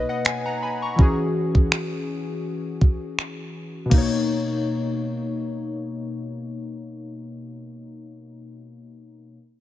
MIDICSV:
0, 0, Header, 1, 3, 480
1, 0, Start_track
1, 0, Key_signature, 5, "major"
1, 0, Tempo, 731707
1, 647, Time_signature, 4, 2, 24, 8
1, 6299, End_track
2, 0, Start_track
2, 0, Title_t, "Synth keys"
2, 0, Program_c, 0, 88
2, 0, Control_c, 0, 64, 127
2, 0, Note_on_c, 0, 47, 72
2, 0, Note_on_c, 0, 58, 68
2, 0, Note_on_c, 0, 63, 64
2, 0, Note_on_c, 0, 71, 54
2, 0, Note_on_c, 0, 73, 77
2, 0, Note_on_c, 0, 75, 63
2, 60, Note_on_c, 0, 78, 65
2, 64, Note_off_c, 0, 75, 0
2, 64, Note_on_c, 0, 75, 57
2, 164, Note_off_c, 0, 78, 0
2, 166, Note_off_c, 0, 75, 0
2, 171, Note_on_c, 0, 80, 69
2, 293, Note_off_c, 0, 80, 0
2, 300, Note_on_c, 0, 82, 66
2, 303, Note_on_c, 0, 78, 58
2, 403, Note_off_c, 0, 82, 0
2, 405, Note_off_c, 0, 78, 0
2, 411, Note_on_c, 0, 83, 62
2, 414, Note_on_c, 0, 80, 54
2, 532, Note_off_c, 0, 83, 0
2, 534, Note_off_c, 0, 80, 0
2, 540, Note_on_c, 0, 85, 59
2, 544, Note_on_c, 0, 82, 54
2, 613, Note_off_c, 0, 47, 0
2, 620, Note_off_c, 0, 58, 0
2, 627, Note_off_c, 0, 63, 0
2, 629, Note_on_c, 0, 52, 69
2, 643, Note_on_c, 0, 61, 64
2, 654, Control_c, 0, 64, 0
2, 657, Note_off_c, 0, 73, 0
2, 657, Note_on_c, 0, 66, 66
2, 658, Note_off_c, 0, 71, 0
2, 669, Note_on_c, 0, 68, 77
2, 767, Note_off_c, 0, 85, 0
2, 769, Note_off_c, 0, 82, 0
2, 788, Control_c, 0, 64, 127
2, 2530, Note_on_c, 0, 47, 73
2, 2532, Note_off_c, 0, 52, 0
2, 2539, Note_off_c, 0, 61, 0
2, 2546, Note_off_c, 0, 66, 0
2, 2552, Note_off_c, 0, 68, 0
2, 2556, Note_on_c, 0, 58, 65
2, 2576, Control_c, 0, 64, 0
2, 2584, Note_on_c, 0, 63, 68
2, 2609, Note_on_c, 0, 73, 82
2, 2691, Control_c, 0, 64, 127
2, 5074, Note_off_c, 0, 47, 0
2, 5101, Note_off_c, 0, 58, 0
2, 5128, Note_off_c, 0, 63, 0
2, 5154, Note_off_c, 0, 73, 0
2, 6135, Control_c, 0, 64, 0
2, 6299, End_track
3, 0, Start_track
3, 0, Title_t, "Drums"
3, 164, Note_on_c, 9, 42, 63
3, 171, Note_on_c, 9, 26, 110
3, 229, Note_off_c, 9, 42, 0
3, 236, Note_off_c, 9, 26, 0
3, 648, Note_on_c, 9, 36, 103
3, 714, Note_off_c, 9, 36, 0
3, 1016, Note_on_c, 9, 36, 75
3, 1082, Note_off_c, 9, 36, 0
3, 1128, Note_on_c, 9, 26, 110
3, 1194, Note_off_c, 9, 26, 0
3, 1847, Note_on_c, 9, 36, 81
3, 1912, Note_off_c, 9, 36, 0
3, 2090, Note_on_c, 9, 26, 102
3, 2156, Note_off_c, 9, 26, 0
3, 2567, Note_on_c, 9, 49, 81
3, 2568, Note_on_c, 9, 36, 97
3, 2633, Note_off_c, 9, 36, 0
3, 2633, Note_off_c, 9, 49, 0
3, 6299, End_track
0, 0, End_of_file